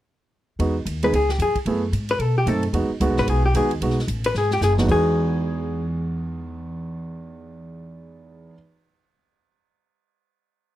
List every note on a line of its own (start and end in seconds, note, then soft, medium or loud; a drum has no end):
0.59 0.85 E2 medium
0.59 0.74 G#3 medium
0.59 0.74 B3 soft
0.59 0.74 D#4 medium
0.59 0.74 F#4 medium
0.59 ride medium
0.85 1.12 D#2 medium
0.85 hi-hat pedal soft
0.85 ride medium
1.03 1.12 G#3 medium
1.03 1.12 B3 medium
1.03 1.12 D#4 medium
1.03 1.13 G#4 medium
1.03 1.13 B4 medium
1.03 ride soft
1.12 1.38 C#2 medium
1.12 1.31 G#4 medium
1.12 ride medium
1.29 1.40 G4 medium
1.29 snare soft
1.38 1.54 F2 medium
1.38 1.56 G#4 medium
1.38 hi-hat pedal soft
1.38 ride medium
1.55 muted upright bass stroke soft
1.55 kick soft
1.55 ride soft
1.66 1.92 F#2 medium
1.66 1.81 A3 medium
1.66 1.81 B3 medium
1.66 1.81 E4 medium
1.66 1.81 G#4 medium
1.66 ride medium
1.92 2.18 G#2 medium
1.92 hi-hat pedal soft
1.92 ride medium
2.09 2.21 B4 medium
2.09 ride soft
2.19 2.45 B2 medium
2.19 2.36 A4 medium
2.19 ride soft
2.38 2.48 G4 medium
2.46 2.72 F#2 medium
2.46 2.61 A3 medium
2.46 2.62 C4 medium
2.46 2.62 D#4 medium
2.46 2.63 A4 medium
2.46 2.62 A4 medium
2.46 hi-hat pedal soft
2.46 ride medium
2.63 ride soft
2.73 2.88 E2 medium
2.73 2.88 G#3 medium
2.73 2.88 B3 soft
2.73 2.89 D#4 medium
2.73 2.88 F#4 medium
2.73 ride medium
2.90 muted upright bass stroke soft
3.00 3.09 C#2 medium
3.00 3.40 G#3 medium
3.00 3.41 B3 medium
3.00 3.41 D#4 medium
3.00 3.41 F#4 medium
3.00 hi-hat pedal soft
3.00 ride medium
3.09 3.17 B1 medium
3.17 3.26 G#1 medium
3.17 3.28 B4 medium
3.17 snare soft
3.27 3.53 B1 medium
3.27 3.44 G#4 medium
3.27 ride medium
3.46 3.55 G4 medium
3.54 3.80 D#2 medium
3.54 3.69 G#3 medium
3.54 3.69 B3 medium
3.54 3.69 D#4 medium
3.54 3.70 F#4 medium
3.54 3.71 G#4 medium
3.54 hi-hat pedal medium
3.54 ride medium
3.71 ride soft
3.80 4.07 B1 medium
3.80 3.96 G#3 medium
3.80 3.96 B3 medium
3.80 3.96 D#4 medium
3.80 3.96 F#4 medium
3.80 ride medium
3.90 snare soft
3.99 snare soft
4.08 4.34 A1 medium
4.08 hi-hat pedal soft
4.08 ride medium
4.24 4.35 B4 medium
4.24 ride medium
4.35 4.61 G#1 medium
4.35 4.52 G#4 medium
4.35 snare soft
4.51 4.62 G4 medium
4.51 snare soft
4.61 4.87 F#1 medium
4.61 4.73 G#4 medium
4.61 snare medium
4.61 hi-hat pedal medium
4.78 4.86 E2 medium
4.78 4.88 G#3 medium
4.78 5.14 B3 medium
4.78 4.89 D#4 medium
4.78 4.89 F#4 medium
4.78 snare medium
4.88 8.52 E2 medium
4.88 8.49 E2 medium
4.88 8.53 E3 medium
4.88 8.53 G#3 medium
4.88 8.53 D#4 medium
4.88 8.54 F#4 medium
4.88 8.50 G#4 medium
4.88 kick medium
4.88 crash medium